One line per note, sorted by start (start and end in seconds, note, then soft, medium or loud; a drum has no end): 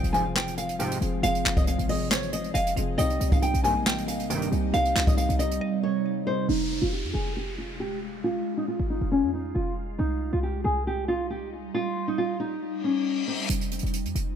0.00 0.98 F1 loud
0.00 2.95 C3 medium
0.00 0.13 F3 loud
0.00 2.95 G#3 medium
0.00 0.14 C4 medium
0.00 1.22 F4 medium
0.00 0.15 G#4 loud
0.00 0.10 G5 medium
0.00 0.76 G5 loud
0.00 closed hi-hat medium
0.13 0.24 G#2 medium
0.13 0.24 C3 medium
0.13 0.91 F3 medium
0.13 0.24 F3 loud
0.13 0.92 C4 medium
0.13 0.93 G#4 medium
0.13 0.32 G#5 medium
0.13 closed hi-hat medium
0.36 0.54 G5 medium
0.36 snare loud
0.36 clap medium
0.48 closed hi-hat medium
0.57 0.76 F5 medium
0.57 closed hi-hat medium
0.69 closed hi-hat medium
0.79 0.98 G#2 loud
0.79 0.98 C3 loud
0.79 0.98 F3 loud
0.79 0.98 G5 medium
0.79 closed hi-hat medium
0.91 closed hi-hat medium
1.00 1.22 F1 loud
1.00 1.20 F3 medium
1.00 1.21 C4 medium
1.00 1.22 G#4 medium
1.00 closed hi-hat medium
1.22 1.44 F1 loud
1.22 1.81 F3 medium
1.22 1.82 C4 loud
1.22 6.45 D#4 loud
1.22 1.83 G#4 loud
1.22 2.07 F5 loud
1.22 1.55 F5 loud
1.22 closed hi-hat medium
1.35 closed hi-hat medium
1.45 1.77 F1 loud
1.45 snare medium
1.45 clap medium
1.45 closed hi-hat medium
1.57 1.65 D#5 medium
1.57 kick loud
1.57 closed hi-hat medium
1.67 1.86 F5 medium
1.67 closed hi-hat medium
1.79 2.52 G#1 loud
1.79 closed hi-hat medium
1.88 2.67 F3 medium
1.88 2.67 C4 medium
1.88 2.68 G#4 medium
1.88 2.08 D#5 medium
1.88 open hi-hat medium
2.11 2.52 C5 medium
2.11 2.29 C#5 medium
2.11 snare loud
2.11 clap medium
2.11 hi-hat pedal medium
2.23 closed hi-hat medium
2.33 2.51 D#5 medium
2.33 closed hi-hat medium
2.44 closed hi-hat medium
2.54 2.76 F1 loud
2.54 2.76 D#5 medium
2.54 2.73 F5 medium
2.54 closed hi-hat loud
2.67 closed hi-hat medium
2.75 2.98 F1 loud
2.75 2.95 F3 medium
2.75 2.96 C4 medium
2.75 2.97 G#4 medium
2.75 2.97 F5 medium
2.75 closed hi-hat medium
2.98 3.20 C2 loud
2.98 3.57 C3 loud
2.98 6.45 C3 medium
2.98 6.45 G3 medium
2.98 3.57 G3 medium
2.98 3.58 D#4 loud
2.98 3.30 D#5 loud
2.98 4.26 G5 loud
2.98 closed hi-hat medium
3.10 closed hi-hat medium
3.20 3.53 C2 loud
3.20 closed hi-hat medium
3.32 3.41 F5 medium
3.32 kick loud
3.32 closed hi-hat medium
3.42 3.61 G5 medium
3.42 closed hi-hat medium
3.54 4.48 A#1 loud
3.54 closed hi-hat medium
3.63 3.74 G2 loud
3.63 4.42 C3 medium
3.63 3.74 C3 medium
3.63 3.74 D#3 loud
3.63 4.42 G3 medium
3.63 4.43 A#3 medium
3.63 3.82 G#5 medium
3.63 closed hi-hat medium
3.86 4.05 G5 medium
3.86 snare loud
3.86 clap medium
3.98 closed hi-hat medium
4.08 4.26 F5 medium
4.08 closed hi-hat medium
4.19 closed hi-hat medium
4.30 4.49 G2 loud
4.30 4.49 C3 loud
4.30 4.49 D#3 loud
4.30 4.48 G5 medium
4.30 closed hi-hat medium
4.42 closed hi-hat medium
4.50 4.73 C2 loud
4.50 4.71 C3 medium
4.50 4.71 G3 medium
4.50 4.72 D#4 medium
4.50 closed hi-hat medium
4.72 4.95 C2 loud
4.72 5.32 C3 loud
4.72 5.32 G3 medium
4.72 5.33 D#4 loud
4.72 5.57 F5 loud
4.72 5.05 F5 loud
4.72 closed hi-hat medium
4.85 closed hi-hat medium
4.96 5.28 C2 loud
4.96 snare medium
4.96 clap medium
4.96 closed hi-hat medium
5.07 5.16 D#5 medium
5.07 kick loud
5.07 closed hi-hat medium
5.17 5.36 F5 medium
5.17 closed hi-hat medium
5.29 5.60 C2 loud
5.29 closed hi-hat medium
5.38 6.17 C3 medium
5.38 6.18 G3 medium
5.38 6.18 D#4 medium
5.38 5.80 D#5 medium
5.38 closed hi-hat medium
5.38 open hi-hat medium
5.51 closed hi-hat medium
5.61 6.45 D#5 medium
5.83 6.24 C#5 medium
6.25 6.46 C3 medium
6.25 6.46 G3 medium
6.25 6.47 D#4 medium
6.25 6.45 C5 medium
6.49 6.81 F1 loud
6.49 9.96 G#3 medium
6.49 6.80 D#4 loud
6.49 9.96 F4 medium
6.49 downlifter medium
6.81 7.06 F1 loud
6.81 6.91 F4 medium
6.93 7.11 G4 medium
7.04 7.14 F2 medium
7.13 8.42 F1 loud
7.13 7.32 G#4 medium
7.37 7.55 G4 medium
7.58 7.77 F4 medium
7.80 7.98 G4 medium
8.24 8.56 F4 loud
8.57 8.66 D#4 medium
8.68 8.86 F4 medium
8.80 9.01 G#1 loud
8.90 9.08 D#4 medium
9.01 9.25 F1 loud
9.12 9.30 C#4 medium
9.23 9.54 F2 loud
9.34 9.52 D#4 medium
9.55 9.98 F1 loud
9.55 9.73 F4 medium
9.99 10.31 C2 loud
9.99 13.46 G3 medium
9.99 10.30 D#4 loud
9.99 13.46 D#4 medium
10.33 10.64 C2 loud
10.33 10.41 F4 medium
10.43 10.61 G4 medium
10.64 11.70 C2 loud
10.64 10.83 G#4 medium
10.87 11.05 G4 medium
11.08 11.27 F4 medium
11.30 11.49 G4 medium
11.74 12.06 F4 loud
12.08 12.16 D#4 medium
12.18 12.37 F4 medium
12.40 12.81 D#4 medium
12.62 reverse cymbal medium
12.84 13.25 C#4 medium
13.28 13.46 C4 medium
13.50 13.82 F1 loud
13.50 14.36 C3 medium
13.50 14.36 G#3 medium
13.50 14.36 F4 medium
13.50 closed hi-hat medium
13.61 closed hi-hat medium
13.71 closed hi-hat medium
13.79 closed hi-hat medium
13.83 14.07 F1 loud
13.83 closed hi-hat soft
13.93 closed hi-hat medium
14.05 14.15 F2 loud
14.05 closed hi-hat medium
14.15 14.36 F1 loud
14.15 closed hi-hat medium